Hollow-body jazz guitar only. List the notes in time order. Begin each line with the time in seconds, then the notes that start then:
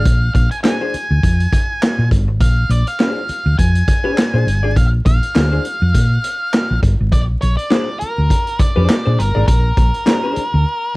0.64 D4 G#4 C5
0.81 D4 G#4 C5
3.00 D4 G#4 C5
4.04 D4 G#4 C5
4.34 D4 G#4 C5
4.63 D4 G#4 D5
5.35 D4 G#4 C5
5.51 D4 G#4 C5
7.71 D4 G#4 C5
8.76 D4 G#4 C5
9.05 D4 G#4 C5
9.35 D4 G#4 D5
10.06 D4 G#4 C5
10.23 D4 G#4 C5